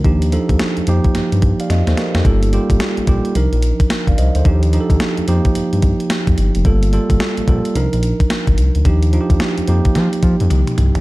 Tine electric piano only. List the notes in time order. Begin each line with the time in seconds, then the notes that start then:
0.05 F3 D4 D#4 G4
0.32 F3 D4 D#4 A4
0.88 F3 A#3 D#4 G4
1.60 D5 F5
1.71 C5 D#5
1.88 A4 C5
1.98 G4 A#4
2.16 D#4 G4
2.25 G3 A#3 F4 A4
2.53 G3 A#3 F4 G4
3.08 G3 A#3 F4 G4
3.35 F3 D4 D#4 A#4
4.08 D5 F5
4.18 C5 D#5
4.36 A4 C5
4.45 F3 D4 D#4 G4
4.73 F3 D4 D#4 G4
4.81 A4
5.28 F3 A#3 D#4 G4
6.65 G3 A#3 F4 A4
6.93 G3 A#3 F4 A4
7.48 G3 A#3 F4 A4
7.75 F3 D4 D#4 A#4
8.85 F3 D4 D#4 G4
9.13 F3 D4 D#4 F4
9.21 G4
9.68 F3 A#3 D#4 G4